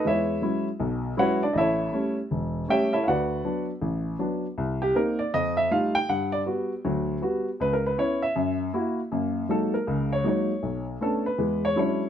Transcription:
X:1
M:4/4
L:1/8
Q:"Swing" 1/4=159
K:F#mix
V:1 name="Grand piano"
[EBce]3 z3 [FBcf] [=D=d] | [E=Acde]3 z3 [=Gce=g] [EAce] | [FB=d^ef]3 z4 z | z =G _B =d _e =e =f =g |
f =d z6 | (3B A B c e2 z3 | [K:F#] z2 =A ^A2 c c2- | c z =A B2 c c2 |]
V:2 name="Grand piano"
[E,,G,]2 [F,G,CE] z [B,,,B,,]2 [F,G,CE] z | =A,,,2 [=G,=A,C] z E,,,2 [G,A,C] z | =D,,2 [F,B,=D] z =A,,,2 [F,B,D] z | =C,,2 [_B,=C_E] z =F,,2 [=G,=A,E=F] z |
=G,,2 [=G,B,F] z [=D,,F,]2 [G,B,F] z | C,,2 [B,CE] z F,,2 [A,EF] z | [K:F#] [F,,A,]2 [F,G,A,D] z [C,,C,]2 [F,G,A,D] z | B,,,2 [=A,B,C=D] z [=E,,G,]2 [F,G,CD=E] z |]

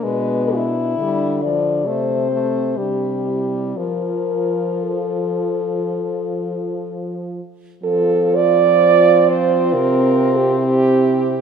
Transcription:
X:1
M:4/4
L:1/16
Q:1/4=62
K:F
V:1 name="French horn"
=B2 E4 d2 c4 G4 | B4 A8- A2 z2 | F12 E4 |]
V:2 name="French horn"
D8 C4 D2 E2 | F12- F2 z2 | A2 d4 c2 B3 G G4 |]
V:3 name="French horn" clef=bass
^G,2 z2 =G,2 F,2 A,2 A,2 G,4 | F,12- F,2 z2 | C16 |]
V:4 name="French horn" clef=bass
=B,,4 D,4 C,4 C,4 | F,12- F,2 z2 | F,8 C,8 |]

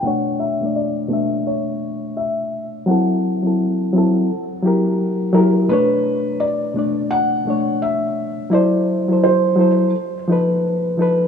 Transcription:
X:1
M:4/4
L:1/16
Q:"Swing 16ths" 1/4=85
K:Bm
V:1 name="Felt piano"
f2 e2 d4 c4 e4 | f12- f2 ^A2 | B4 d4 f4 e4 | d4 =c4 z8 |]
V:2 name="Reed electric piano"
[B,,A,Dc]2 z [B,,A,Dd]2 z [B,,A,De]6 z4 | [F,=CEA]2 z [F,CEA]2 z [F,CEA]2 z2 [F,EG^A]3 z [F,EGA]2 | [B,,A,Dc]4- [B,,A,Dc] z [B,,A,Dd]3 z [B,,A,Dc]4- [B,,A,Dc] z | [F,EA=c]2 z [F,EAc]2 z [F,EAc]2 z2 [=F,_EAB]3 z [F,EAB]2 |]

